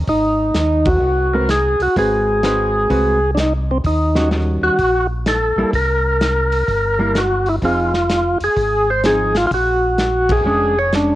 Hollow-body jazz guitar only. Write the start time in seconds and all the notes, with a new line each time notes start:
1.34 G#3 C4 F#4 B4
1.97 G#3 C4 F#4 B4
2.43 G#3 C4 F#4 B4
2.90 G#3 C4 F#4 B4
4.16 D#3 G3 C#4 F#4
5.58 G3 A#3 E4
6.99 G3 A#3 E4
7.63 F3 C4 D#4 G#4
9.04 F3 C4 D#4 G#4
10.46 G#3 C#4 D4
10.94 G#3 C#4 D4